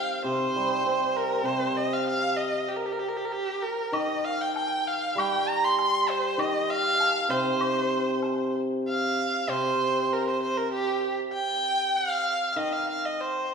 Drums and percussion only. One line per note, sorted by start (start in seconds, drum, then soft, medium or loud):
3.93 high woodblock medium
4.56 low woodblock soft
5.18 high woodblock medium
5.79 low woodblock soft
6.39 high woodblock medium
7.00 low woodblock soft
7.61 high woodblock medium
8.22 low woodblock soft